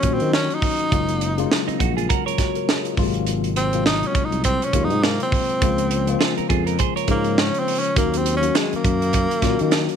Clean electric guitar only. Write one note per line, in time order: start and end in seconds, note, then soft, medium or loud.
1.68 1.80 C4 medium
1.68 1.79 D#4 medium
1.79 1.96 D#4 medium
1.79 1.96 F#4 medium
1.97 2.09 F4 medium
1.97 2.09 G#4 medium
2.09 2.26 F#4 medium
2.09 2.26 A#4 medium
2.26 2.94 A#4 medium
2.26 2.94 C#5 medium
6.21 6.37 F4 medium
6.21 6.37 G#4 soft
6.37 6.49 A#4 medium
6.49 6.66 F4 medium
6.49 6.66 G#4 medium
6.67 6.78 A#4 medium
6.79 6.96 G#4 medium
6.79 6.95 C5 medium
6.96 7.80 A#4 medium
6.96 7.80 C#5 medium